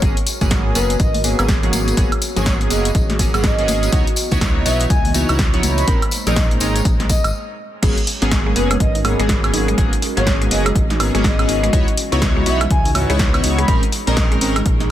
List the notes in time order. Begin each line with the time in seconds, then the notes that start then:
0.02 G#1 F#3 A#3 B3 C#4 F#4 G#4 A#4 C#5, kick, closed hi-hat
0.17 closed hi-hat
0.27 open hi-hat, tambourine
0.41 G#1 F#3 A#3 B3 C#4 G#4, kick, closed hi-hat, tambourine, high conga
0.50 kick, snare, closed hi-hat, tambourine
0.75 F#1 F#3 A#3 B3 C#4 G#4 B4, open hi-hat, tambourine
0.90 closed hi-hat, tambourine
1.00 G#1 D#5, kick, closed hi-hat, tambourine
1.14 open hi-hat, high conga
1.24 F#3 A#3 B3 C#4 G#4, open hi-hat, tambourine
1.39 G#1 F#3 A#3 B3 C#4 G#4, closed hi-hat, tambourine, high woodblock
1.48 kick, snare, closed hi-hat, tambourine
1.63 F#3 A#3 B3 C#4 G#4, closed hi-hat, low conga
1.73 G#1, open hi-hat, tambourine, high conga
1.88 closed hi-hat, tambourine
1.97 G#1 F#3 A#3 B3 C#4 G#4, kick, closed hi-hat, tambourine
2.12 closed hi-hat, high woodblock
2.22 open hi-hat, tambourine
2.36 G#1 F#3 A#3 B3 C#4 G#4 C#5, closed hi-hat, tambourine, high conga, low conga
2.46 kick, snare, closed hi-hat, tambourine
2.61 closed hi-hat
2.70 F#1 F#3 A#3 B3 C#4 G#4 D#5, open hi-hat, tambourine
2.85 closed hi-hat, tambourine
2.95 G#1, kick, closed hi-hat, tambourine
3.10 snare, closed hi-hat, high conga
3.19 F#3 A#3 B3 C#4 G#4, kick, open hi-hat, tambourine
3.34 G#1 F#3 A#3 B3 C#4 G#4, closed hi-hat, tambourine, high woodblock
3.44 D#5, kick, snare, closed hi-hat, tambourine
3.58 F#3 A#3 B3 C#4 G#4, closed hi-hat
3.68 G#1, open hi-hat, tambourine, high conga
3.83 closed hi-hat, tambourine
3.92 C#2 E3 B3 D#4 E4 F#4 C#5 D#5, kick, closed hi-hat
4.07 closed hi-hat
4.16 open hi-hat, tambourine
4.31 C#2 B3 D#4 E4 F#4 C#5, kick, closed hi-hat, tambourine, high conga
4.41 kick, snare, closed hi-hat, tambourine
4.65 B1 B3 D#4 E4 F#4 C#5 E5, open hi-hat, tambourine
4.80 closed hi-hat, tambourine
4.90 C#2 G#5, kick, closed hi-hat, tambourine
5.05 open hi-hat, high conga
5.14 B3 D#4 E4 F#4 C#5, open hi-hat, tambourine
5.29 C#2 B3 D#4 E4 F#4 C#5, closed hi-hat, tambourine, high woodblock
5.39 kick, snare, closed hi-hat, tambourine
5.53 B3 D#4 E4 F#4 C#5, closed hi-hat, low conga
5.63 C#2, open hi-hat, tambourine, high conga
5.78 B5, closed hi-hat, tambourine
5.87 A#1 G#3 A#3 C4 C#4 D#4 A#4 C5, kick, closed hi-hat, tambourine
6.02 closed hi-hat, high woodblock
6.11 open hi-hat, tambourine
6.27 A#1 G#3 C4 C#4 D#4 A#4 D#5, closed hi-hat, tambourine, high conga, low conga
6.36 kick, snare, closed hi-hat
6.51 closed hi-hat
6.60 G#1 G#3 C4 C#4 D#4 A#4, open hi-hat, tambourine
6.76 closed hi-hat, tambourine
6.85 A#1, kick, closed hi-hat
7.00 snare, closed hi-hat, high conga
7.09 D#5, kick, open hi-hat, tambourine
7.24 G#1, closed hi-hat, tambourine, high woodblock
7.82 G#1 F#3 G#3 A#3 B3 C#4 F#4 G#4 A#4 C#5, kick, closed hi-hat, crash
7.98 closed hi-hat
8.07 open hi-hat
8.22 G#1 F#3 A#3 B3 C#4 G#4, closed hi-hat
8.31 kick, snare, closed hi-hat
8.46 G#3
8.56 F#1 F#3 A#3 B3 C#4 G#4 B4, open hi-hat
8.71 G#3, closed hi-hat, high woodblock
8.80 G#1 D#5, kick, closed hi-hat
8.95 D#4, open hi-hat
9.04 G#2 F#3 A#3 B3 C#4 G#4, open hi-hat, high woodblock
9.19 G#1 F#3 G#3 A#3 B3 C#4 G#4, closed hi-hat
9.29 kick, snare, closed hi-hat
9.44 F#3 A#3 B3 C#4 G#4, closed hi-hat, high woodblock
9.53 G#1 D#4, open hi-hat
9.68 G#3, closed hi-hat
9.78 G#1 F#3 G#3 A#3 B3 C#4 G#4 D#5, kick, closed hi-hat
9.93 closed hi-hat
10.02 open hi-hat
10.17 G#1 F#3 A#3 B3 C#4 G#4 C#5, closed hi-hat
10.27 kick, snare, closed hi-hat
10.41 G#3, closed hi-hat
10.51 F#1 F#3 A#3 B3 C#4 G#4 D#5, open hi-hat
10.66 G#3, closed hi-hat, high woodblock
10.75 G#1, kick, closed hi-hat
10.90 D#4, snare, closed hi-hat
11.00 G#2 F#3 A#3 B3 C#4 G#4, open hi-hat, high woodblock
11.14 G#1 F#3 G#3 A#3 B3 C#4 G#4, closed hi-hat
11.24 D#5, kick, snare, open hi-hat
11.39 F#3 A#3 B3 C#4 G#4, closed hi-hat, high woodblock
11.49 G#1 D#4, open hi-hat
11.63 G#3, closed hi-hat
11.73 C#2 E3 G#3 B3 D#4 E4 F#4 C#5, kick, closed hi-hat
11.88 closed hi-hat
11.97 open hi-hat
12.12 C#2 B3 D#4 E4 F#4 C#5, closed hi-hat
12.22 kick, snare, closed hi-hat
12.36 G#3
12.46 B1 B3 D#4 E4 F#4 C#5 E5, open hi-hat
12.61 G#3, closed hi-hat, high woodblock
12.70 C#2 G#5, kick, closed hi-hat
12.85 D#4, open hi-hat
12.95 G#2 B3 D#4 E4 F#4 C#5, open hi-hat, high woodblock
13.10 C#2 G#3 B3 D#4 E4 F#4 C#5, closed hi-hat
13.19 kick, snare, closed hi-hat
13.34 B3 D#4 E4 F#4 C#5, closed hi-hat, high woodblock
13.44 C#2 D#4, open hi-hat
13.58 G#3 B5, closed hi-hat
13.68 A#1 G#3 C4 C#4 D#4 G#4 A#4 C#6, kick, closed hi-hat
13.83 closed hi-hat
13.92 open hi-hat
14.07 A#1 G#3 C4 C#4 D#4 A#4 D#5, closed hi-hat
14.17 kick, snare, closed hi-hat
14.32 G#3, closed hi-hat
14.41 G#1 G#3 C4 C#4 D#4 A#4, open hi-hat
14.56 G#3, closed hi-hat, high woodblock
14.66 A#1, kick, closed hi-hat
14.80 D#4, snare, closed hi-hat